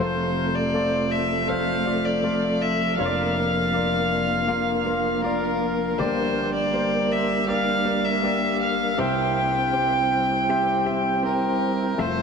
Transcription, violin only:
0.00 C5
0.55 D5
1.11 E5
1.48 F5
2.05 D5
2.62 E5
3.00 F5
5.25 A#4
5.99 C5
6.55 D5
7.12 E5
7.49 F5
8.05 E5
8.62 F5
8.99 G5
11.25 A#4
12.01 C5

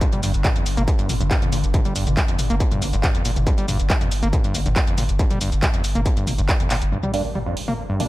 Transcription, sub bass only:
0.13 G1
0.23 G1
0.34 G1
0.56 G1
0.66 G1
0.77 G1
0.99 G1
1.09 G1
1.21 G1
1.42 G1
1.52 G1
1.64 G1
1.85 G1
1.96 G1
2.07 G1
2.28 G1
2.39 G1
2.50 G1
2.72 G1
2.82 G1
2.93 G1
3.15 G1
3.25 G1
3.36 G1
3.58 G1
3.68 G1
3.80 G1
4.01 G1
4.11 G1
4.23 G1
4.44 G1
4.55 G1
4.66 G1
4.88 G1
4.98 G1
5.09 G1
5.31 G1
5.41 G1
5.52 G1
5.74 G1
5.84 G1
5.95 G1
6.17 G1
6.27 G1
6.39 G1
6.60 G1
6.70 G1
6.82 G1

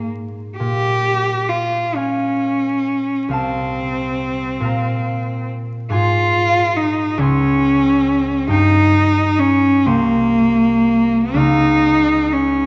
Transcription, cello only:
0.58 G4
1.49 F4
1.96 C#4
3.32 C4
5.92 F4
6.77 D#4
7.20 C#4
8.50 D#4
9.39 C#4
9.86 A#3
11.36 D#4
12.33 C#4

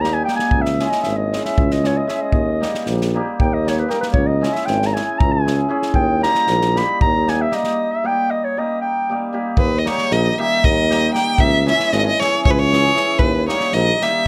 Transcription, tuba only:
Already playing: D#2
0.53 C#2
1.06 G#1
1.58 C#2
2.33 D#2
2.87 A#1
3.40 D#2
4.13 C#2
4.68 G#1
5.21 C#2
5.95 D#2
6.48 A#1
7.02 D#2
9.57 D#2
10.11 A#1
10.64 D#2
11.38 C#2
11.92 G#1
12.47 C#2
13.20 D#2
13.73 A#1

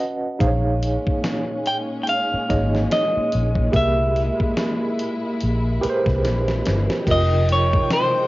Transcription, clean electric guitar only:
1.67 G5
2.03 G5
2.09 F5
2.93 D#5
3.76 E5
7.11 D#5
7.53 C#5
7.94 C5

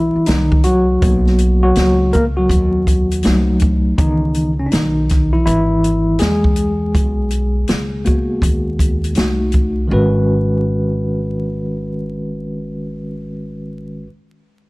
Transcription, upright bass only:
Already playing: B1
0.16 muted upright bass stroke
0.28 C2
1.02 B1
1.77 C#2
2.50 D#2
3.25 C2
3.99 C#2
4.73 B1
5.47 G#1
6.21 E2
6.95 B1
7.69 C#2
8.42 D#2
9.17 C2
9.91 G#1

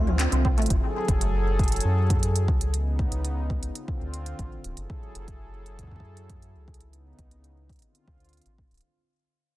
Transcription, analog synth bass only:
Already playing: D2
0.32 C2
0.58 A1
0.70 F#1
1.08 F#1
1.85 F#2
2.48 C#2
3.12 C#2
4.01 D2
4.39 A1
4.64 D1
4.77 F#1
5.15 F#1
5.91 F#2
6.55 C#2
7.19 C#2
8.08 D2
8.46 A1
8.71 D1

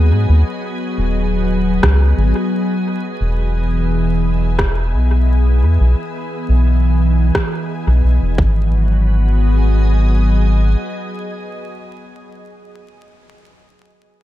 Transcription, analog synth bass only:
Already playing: D#2
0.11 G#2
0.29 D#2
0.98 D#1
1.83 C#2
2.17 G#1
3.21 E1
4.93 B1
5.62 E2
5.80 B1
6.49 B1
7.87 B1
8.04 B1
8.22 E1
8.38 G#1

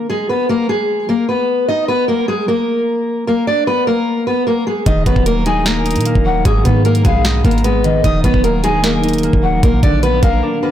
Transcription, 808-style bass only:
4.86 D#1
5.06 D#1
5.16 D#1
5.96 A#2
6.15 D#1
6.45 G#1
6.65 G#2
7.05 B1
7.45 G#1
8.04 D#1
8.24 D#1
8.34 D#1
9.33 D#1
9.63 A#1
9.83 A#1
10.23 A#1

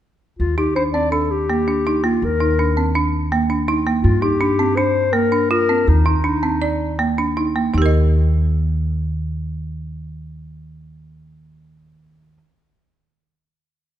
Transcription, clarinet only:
0.39 F4
0.58 G4
0.75 C5
0.93 D5
1.12 A4
1.31 G4
2.04 F4
2.25 A#4
4.03 F4
4.22 G4
4.77 C5
5.13 A#4
5.51 A#4
5.89 D#4

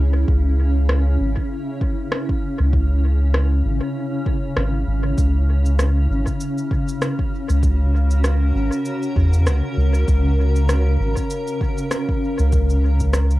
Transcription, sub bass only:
Already playing: C#2
0.28 C#2
1.20 G#1
2.60 C#2
3.65 G#1
4.57 G#1
4.87 G#1
5.18 C#2
6.10 G#1
7.50 C#2
8.55 G#1
9.16 E2
9.47 C#2
9.77 C#2
10.08 C#2
11.00 G#1
12.39 C#2

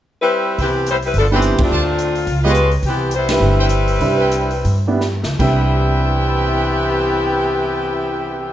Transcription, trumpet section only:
0.59 E4 B4 C5 G5
1.32 E4 B4 C5 G5
1.72 F4 C5 D5 A5
2.44 F4 B4 C#5 D#5
3.58 E4 B4 C5 G5
4.19 C4 E4 B4 G5
5.39 E4 B4 E5 G5

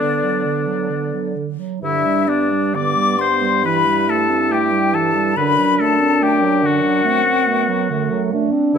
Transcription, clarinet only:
0.00 D3
0.24 F#3
0.45 D3
0.67 F#3
0.90 D3
1.14 F#3
1.36 D3
1.59 F#3
1.81 D3
2.05 G3
2.27 B3
2.50 G3
2.74 D3
2.96 G3
3.18 B3
3.41 G3
3.64 E3
3.85 G3
4.08 A3
4.29 C4
4.51 A3
4.72 G3
4.93 E3
5.14 G3
5.36 D3
5.58 F#3
5.79 A3
6.00 C4
6.21 A3
6.42 F#3
6.63 D3
6.83 F#3
7.04 A3
7.25 C4
7.46 A3
7.68 F#3
7.90 D3
8.11 F#3
8.32 A3
8.52 C4
8.74 D3

